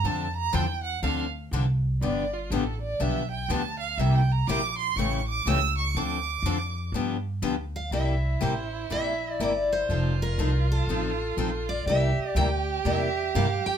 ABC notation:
X:1
M:4/4
L:1/8
Q:"Swing" 1/4=122
K:Cmix
V:1 name="Violin"
a b g ^f =f z3 | d F A d e g a f | (3e g b d' c' ^c' d' e' c' | d'4 z4 |
E8 | F8 | G8 |]
V:2 name="Steel-string acoustic guitar"
z8 | z8 | z8 | z6 z f |
e2 c2 e2 d c- | c B2 A4 d | e2 g2 e2 f g |]
V:3 name="Steel-string acoustic guitar"
[D,F,CDA] z [D,F,CDA] z [D,F,CDA] z [D,F,CDA] z | [D,F,=B,DG] z [D,F,B,DG] z [D,F,B,DG] z [D,F,B,DG] z | [C,G,B,EG] z [C,G,B,EG] z [^C,E,A,^CG] z [C,E,A,CG] z | [D,F,CDA] z [D,F,CDA] z [D,F,=B,DG] z [D,F,B,DG] z |
[C,G,B,EG] z [C,G,B,EG] z [C,G,B,EG] z [C,G,B,EG] z | [F,C_EA] z [F,CEA] z [F,CEA] z [F,CEA] z | [C,G,B,EG] z [C,G,B,EG] z [C,G,B,EG] z [C,G,B,EG] z |]
V:4 name="Upright bass" clef=bass
F,,2 E,,2 D,,2 C,,2 | G,,,2 A,,,2 =B,,,2 D,,2 | C,,2 B,,,2 A,,,2 ^C,,2 | D,,2 F,,2 G,,2 D,,2 |
C,,2 A,,,2 B,,,2 G,,,2 | F,,,2 C,,2 A,,,2 B,,,2 | C,, z D,,2 E,,2 G,, z |]